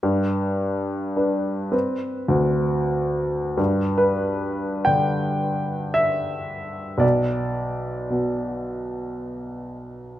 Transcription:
X:1
M:9/8
L:1/16
Q:3/8=55
K:G
V:1 name="Upright piano"
z16 z2 | z2 B4 g6 e6 | d16- d2 |]
V:2 name="Upright piano" clef=bass
G,,6 [DB]3 [CB]3 D,,6 | G,,6 D,12 | B,,,6 B,,12 |]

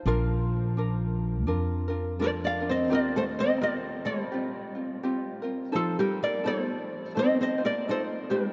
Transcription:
X:1
M:4/4
L:1/8
Q:"Swing" 1/4=84
K:Bb
V:1 name="Ukulele"
[FB]6 (3[Bd] [df] [ce] | (3[Bd] [Ac] [ce] [Bd] [Ac]4 z | (3[FA] [GB] [Bd] [Ac]2 (3[ce] [ce] [Bd] [Ac] [GB] |]
V:2 name="Ukulele"
[DFB]2 [DFB]2 [DFB] [DFB] [DFAB] [DFB] | [CFGB]2 [CFG]2 [CFG] [CF] [CFG] [CFB] | [EFAc]2 [EFAc]2 [EFAc] [EFc] [EFAc] [EFc] |]
V:3 name="Steel-string acoustic guitar"
F,6 (3B, D C | (3B, A, C B, G,4 z | (3F, G, B, A,2 (3C C B, A, G, |]
V:4 name="Upright bass" clef=bass
B,,,4 F,,4 | E,,4 B,,,4 | F,,4 z4 |]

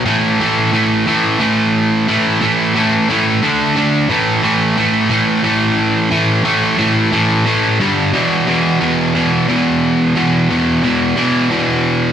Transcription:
X:1
M:6/8
L:1/8
Q:3/8=59
K:Alyd
V:1 name="Distorted electric guitar" clef=bass
[A,,E,A,] [A,,E,A,] [A,,E,A,] [A,,E,A,] [A,,E,A,]2 | [A,,E,A,] [A,,E,A,] [A,,E,A,] [A,,E,A,] [=D,A,=D] [D,A,D] | [A,,E,A,] [A,,E,A,] [A,,E,A,] [A,,E,A,] [A,,E,A,]2 | [A,,E,A,] [A,,E,A,] [A,,E,A,] [A,,E,A,] [A,,E,A,] [=G,,=D,=G,] |
[E,,B,,E,] [E,,B,,E,] [E,,B,,E,] [E,,B,,E,] [E,,B,,E,]2 | [E,,B,,E,] [E,,B,,E,] [E,,B,,E,] [E,,B,,E,] [E,,B,,E,]2 |]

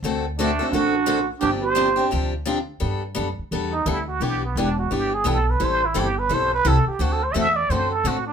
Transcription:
X:1
M:4/4
L:1/16
Q:"Swing" 1/4=172
K:Gmix
V:1 name="Muted trumpet"
z4 D4 ^F6 z2 | G2 c6 z8 | [K:G] z8 z2 _E2 =E2 F2 | G2 B,2 D2 F2 G2 _A2 =A2 B2 |
c2 E2 G2 B2 c2 B2 A2 G2 | (3F2 A2 c2 e2 d2 c2 A2 F2 D2 |]
V:2 name="Clarinet"
z4 A,4 D6 z2 | D2 G6 z8 | [K:G] z16 | z16 |
z16 | z16 |]
V:3 name="Steel-string acoustic guitar"
[D,A,C^FA]2 z2 [D,A,CFA] z [CFA]2 [D,A,CFA]2 z2 [D,A,CFA] z3 | [C,F,CDG]2 z2 [C,F,CDG] z [CDG]2 [C,F,CDG]2 z2 [C,F,CDG] z3 | [K:G] [G,B,DA]2 z2 [G,B,DA] z3 [G,B,DA]2 z2 [G,B,DA] z3 | [E,B,DG]2 z2 [E,B,DG] z3 [E,B,DG]2 z2 [E,B,DG] z3 |
[E,G,CEA]2 z2 [E,G,CEA] z3 [E,G,CEA]2 z2 [E,G,CEA] z3 | [D,A,CFA]2 z2 [D,A,CFA] z3 [D,A,CFA]2 z2 [D,A,CFA] z3 |]
V:4 name="Upright bass" clef=bass
D,,8 A,,,8 | G,,,8 D,,8 | [K:G] G,,4 F,,2 z2 E,,4 D,,4 | B,,,4 E,,,4 G,,,4 B,,,4 |
A,,,4 G,,,4 B,,,4 C,,2 z2 | D,,4 E,,4 F,,4 A,,4 |]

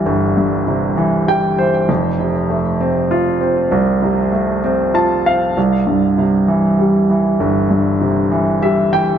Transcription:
X:1
M:6/8
L:1/8
Q:3/8=65
K:C
V:1 name="Grand piano" clef=bass
[G,,,E,G,] G,, C, E, [G,g] [E,c] | [F,,,F,,] C, A, C F C | C,, C, A, C [Fa] [Cf] | C,, G,, C, E, G, E, |
G,,, G,, C, E, [G,e] [E,g] |]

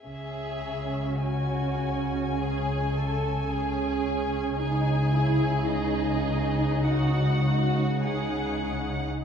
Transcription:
X:1
M:4/4
L:1/8
Q:1/4=52
K:C#m
V:1 name="Violin section"
e2 g6 | g2 d2 f2 f2 |]
V:2 name="Violin section"
G2 F2 G A G2 | G4 F F G2 |]
V:3 name="Viola section"
C6 C2 | D E D4 D2 |]
V:4 name="Cello section" clef=bass
C,8 | C,8 |]
V:5 name="Double bass section" clef=bass
C,,8 | C,,8 |]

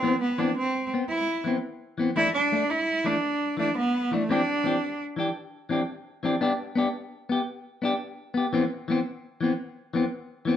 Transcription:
X:1
M:12/8
L:1/8
Q:3/8=113
K:G
V:1 name="Cello"
C B, D C2 z E2 z4 | E D2 E2 D3 D B,2 A, | D4 z8 | z12 |
z12 |]
V:2 name="Clean electric guitar"
[E,B,C] z [E,B,C] z2 [B,C] z2 [E,B,C] z2 [E,B,C] | [E,A,D] z [A,D] z2 [E,A,D] z2 [E,A,D] z2 [E,A,D] | [E,CDG] z [E,CDG] z2 [E,DG] z2 [E,CDG] z2 [E,CDG] | [B,DG] z [B,DG] z2 [B,G] z2 [B,DG] z2 [B,G] |
[E,B,C] z [E,B,C] z2 [E,B,C] z2 [E,B,C] z2 [E,B,C] |]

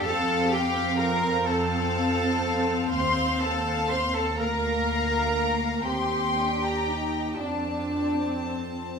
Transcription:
X:1
M:6/8
L:1/16
Q:3/8=41
K:Fmix
V:1 name="Violin section"
a2 g2 b2 a6 | c'2 a2 c' a b6 | g6 d4 c2 |]
V:2 name="Violin section"
f6 f6 | f6 f6 | c'3 b3 a6 |]
V:3 name="Cello section"
A2 G2 B2 A6 | c2 A2 c A B6 | G6 D4 C2 |]
V:4 name="Viola section"
C12- | C6 B,6 | C2 D2 E2 C6 |]
V:5 name="Double bass section" clef=bass
F,,12 | E,,6 D,,6 | E,,6 F,,6 |]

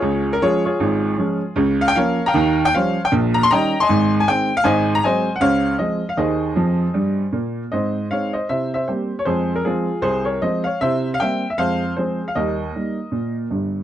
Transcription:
X:1
M:4/4
L:1/16
Q:"Swing" 1/4=156
K:Db
V:1 name="Upright piano"
[FAd]3 B [FAd]2 [FAd]8- [FAd]2 | [K:Ab] z2 f g [Bdf]3 [fgb]4 g [cdf]3 g | z2 b c' [egb]3 [eac']4 a g3 f | [cea]3 b [cea]3 _g [cdf]4 e3 f |
[Ace]12 z4 | [ce]4 [df]2 [ce]2 [c=e]2 [ce]2 [Gc]3 d | [Ac]3 B [FA]4 [Ac]2 [Bd]2 [ce]2 [df]2 | [c=e]3 f [eg]3 e [cf]4 [Ac]3 f |
[Be]12 z4 |]
V:2 name="Upright piano" clef=bass
[D,,D,]4 [F,A,D]4 [A,,,A,,]4 [F,A,D]4 | [K:Ab] [D,,D,]4 [F,B,D]4 [E,,E,]4 [F,G,D]4 | [B,,,B,,]4 [E,G,D]4 [A,,,A,,]4 [E,A,C]4 | [A,,,A,,]4 [_G,A,C]4 [D,,D,]4 [F,A,C]4 |
[E,,E,]4 [F,,F,]4 [G,,G,]4 [B,,B,]4 | [A,,C]4 [A,CE]4 [C,=E]4 [G,B,C]4 | [F,,A,]4 [F,A,C]4 C,,4 [F,A,C]4 | [C,=E]4 [G,B,C]4 [F,,A,]4 [F,A,C]4 |
[E,,G,]4 [G,B,E]4 B,,4 [G,,,G,,]4 |]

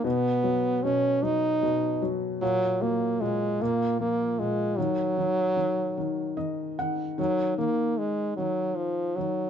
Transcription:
X:1
M:6/8
L:1/8
Q:3/8=51
K:Cblyd
V:1 name="French horn" clef=bass
=B,2 D ^D2 z | G, B, A, B, B, A, | G,4 z2 | G, B, A, G, F, G, |]
V:2 name="Felt piano" clef=bass
=B,, ^F, B,, F, B,, F, | B,, G, B,, B,, F, B,, | E, E, E, E, [E,e] [E,g] | E, E,2 E,2 E, |]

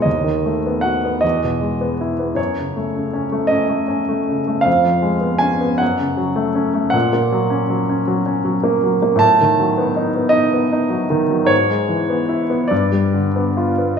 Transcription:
X:1
M:6/8
L:1/16
Q:3/8=52
K:F#dor
V:1 name="Grand piano"
d4 f2 d6 | c6 d6 | ^e4 g2 f2 z4 | [K:F#mix] f12 |
=a6 d6 | c6 =d6 |]
V:2 name="Grand piano"
D,, D, A, B, F B, E,, B,, G, B, E B, | F,, C, A, C, C A, C A, C A, C, A, | ^E,, ^E, G, B, C B, F,, C, F, A, C A, | [K:F#mix] A,, A, F, C F, C F, C F, A, F, A, |
=A,, D, F, B, D B, D B, D F, D, F, | G,, G, E, B, E B, =G,, =G, =D, B, =F B, |]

